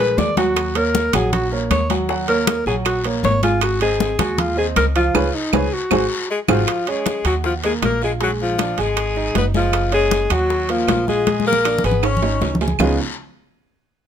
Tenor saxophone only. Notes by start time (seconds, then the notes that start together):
6.30 G#3
6.49 F3
6.88 G#3
7.26 F#3
7.45 F3
7.64 G#3
7.84 A#3
8.04 G#3
8.23 F#3
8.42 F3
8.80 G#3
9.37 B3
9.56 F3
9.94 G#3
10.32 F#3
10.70 F3
11.08 G#3
11.46 A#3
11.85 B3
12.04 C#4
12.80 G#3